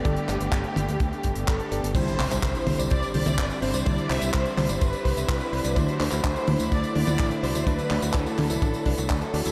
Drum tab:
CC |----------------|x---------------|----------------|----------------|
HH |xxxxxxxxxxxxxxxx|xxoxxxoxxxoxxxox|xxoxxxoxxxoxoxox|xxoxxxoxxxoxxxox|
TB |----------------|xx-xxx-xxx-xxx-x|xx-xxx-xxx-xxx-x|xx-xxx-xxx-xxx-x|
CP |--x-x-------x---|--xxx-------x---|--x-x-x-----x---|--xxx-------x---|
T1 |o-----o---------|o-----o---oo----|o-----o---------|o-----o---oo----|
BD |o---o---o-o-o---|o---o---o---o---|o---o---o-o-o---|o---o---o---o---|

CC |----------------|
HH |xxoxxxoxxxoxoxox|
TB |xx-xxx-x-x-xxx-x|
CP |--x-x-x-----x---|
T1 |o-----o---------|
BD |o---o---o-o-o---|